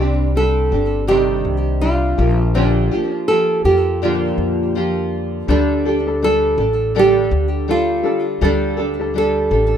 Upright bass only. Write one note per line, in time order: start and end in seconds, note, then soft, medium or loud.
0.00 0.68 C2 medium
0.72 1.41 G1 medium
1.45 2.14 C2 medium
2.19 2.88 A#1 loud
3.65 4.34 F2 medium
4.38 5.44 F2 medium
5.49 6.54 D2 loud
6.58 7.27 A1 medium
7.31 8.01 D2 medium
8.41 9.47 D2 loud
9.51 9.77 A1 loud